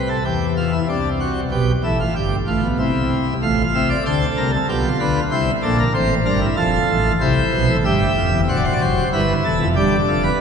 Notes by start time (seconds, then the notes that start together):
Already playing: C2 C3
0.09 A4
0.25 E2 E3 G4
0.57 F4
0.72 E4
0.89 C2 C3 D4
1.20 F#4
1.51 B1 B2 G4
1.84 A1 A2 E4
2.00 F4
2.15 G1 G2 G4
2.47 A1 A2 F4
2.63 B1 B2
2.79 C2 C3 E4
3.42 A1 A2 F4 F5
3.74 C2 C3 E5
3.90 D5
4.06 D2 D3 A4 C5
4.37 C2 C3 A#4
4.54 A4
4.69 B1 B2 F4 G4
5.00 D2 D3 B4
5.31 C2 C3 E4 C5
5.63 A#1 A#2 D4 A4
5.79 A#4
5.94 A1 A2 C4 C5
6.25 G1 G2 D4 A#4
6.41 E4
6.57 F1 F2 F4 A4
6.89 A1 A2
7.20 C2 C3 E4 C5
7.53 B1 B2
7.69 A1 A2
7.85 G1 G2 G4 E5
8.17 F1 F2
8.33 E1 E2
8.48 D1 D2 F#4 C5
8.56 D5
8.65 C5
8.73 D5
8.80 F#1 F#2 C5
9.13 G1 G2 E4 B4
9.45 E1 E2 A4
9.60 F1 F2
9.76 G1 G2 D4 G4
10.08 F1 F2 A4
10.23 B4